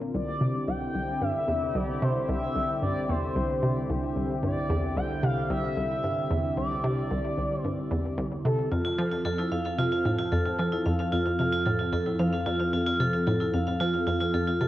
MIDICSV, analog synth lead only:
0, 0, Header, 1, 2, 480
1, 0, Start_track
1, 0, Key_signature, -1, "major"
1, 0, Tempo, 535714
1, 129, Time_signature, 4, 2, 24, 8
1, 13152, End_track
2, 0, Start_track
2, 0, Title_t, "Analog synth lead"
2, 0, Program_c, 0, 81
2, 128, Note_on_c, 0, 74, 103
2, 609, Note_on_c, 0, 79, 113
2, 622, Note_off_c, 0, 74, 0
2, 1089, Note_on_c, 0, 76, 112
2, 1103, Note_off_c, 0, 79, 0
2, 1570, Note_on_c, 0, 74, 102
2, 1583, Note_off_c, 0, 76, 0
2, 1811, Note_on_c, 0, 72, 90
2, 1824, Note_off_c, 0, 74, 0
2, 2044, Note_off_c, 0, 72, 0
2, 2050, Note_on_c, 0, 76, 104
2, 2496, Note_off_c, 0, 76, 0
2, 2529, Note_on_c, 0, 74, 96
2, 2771, Note_on_c, 0, 72, 88
2, 2784, Note_off_c, 0, 74, 0
2, 3730, Note_off_c, 0, 72, 0
2, 3969, Note_on_c, 0, 74, 100
2, 4448, Note_on_c, 0, 79, 108
2, 4461, Note_off_c, 0, 74, 0
2, 4688, Note_on_c, 0, 77, 105
2, 4702, Note_off_c, 0, 79, 0
2, 4922, Note_off_c, 0, 77, 0
2, 4927, Note_on_c, 0, 76, 110
2, 5852, Note_off_c, 0, 76, 0
2, 5887, Note_on_c, 0, 74, 102
2, 6819, Note_off_c, 0, 74, 0
2, 6819, Note_on_c, 0, 72, 102
2, 7292, Note_off_c, 0, 72, 0
2, 7571, Note_on_c, 0, 69, 109
2, 7793, Note_off_c, 0, 69, 0
2, 13152, End_track
0, 0, End_of_file